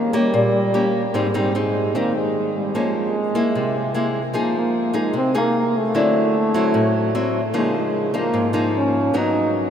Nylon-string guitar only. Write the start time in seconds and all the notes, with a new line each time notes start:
Already playing: D#3 A#3 C#4 G4
0.13 A#3 C#4 G4
0.34 A#2
0.74 A#3 C#4 G4
1.14 G#2 G3 C4 D#4
1.34 G3 C4 D#4
1.55 C4 D#4
1.95 D#3 C4 D#4
2.75 F3 A#3 C#4
3.35 G#3 A#3 E4
3.55 C3
3.94 G#3 A#3 E4
4.33 F3 A#3 D#4 G#4
4.93 A#3 D#4 G#4
5.13 C3
5.34 A#3 D#4 G#4
5.94 D3 F#3 C4 E4
6.54 F#3 C4 E4
6.74 A2
7.15 F#3 C4 E4
7.54 C#3 F3 A#3 D#4
8.14 F3 A#3 D#4
8.34 G#2
8.53 F3 A#3 D#4
9.14 G#2 F#3 B3 D#4